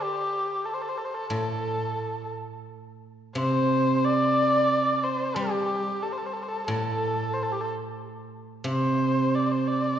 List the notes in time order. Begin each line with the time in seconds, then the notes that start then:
Already playing: D3
0.02 G4
0.65 A4
0.74 C5
0.82 A4
0.89 C5
0.98 A4
1.05 C5
1.14 A4
1.30 A2 A4
3.35 C3 C5
4.04 D5
5.04 C5
5.36 G3 G4
6.03 A4
6.12 C5
6.18 A4
6.26 C5
6.34 A4
6.43 C5
6.48 A4
6.68 A2 A4
7.33 C5
7.43 A4
7.52 G4
7.60 A4
8.64 C3
8.69 C5
9.35 D5
9.46 D5
9.52 C5
9.67 D5